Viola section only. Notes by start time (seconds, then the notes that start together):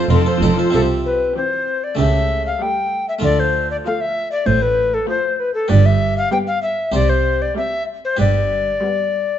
Already playing: F4
0.10 C4
0.25 F4
0.41 C4
0.57 F4
1.36 E3
2.61 G3
3.85 F3
5.09 F3
6.32 G3
7.57 G3
8.83 G3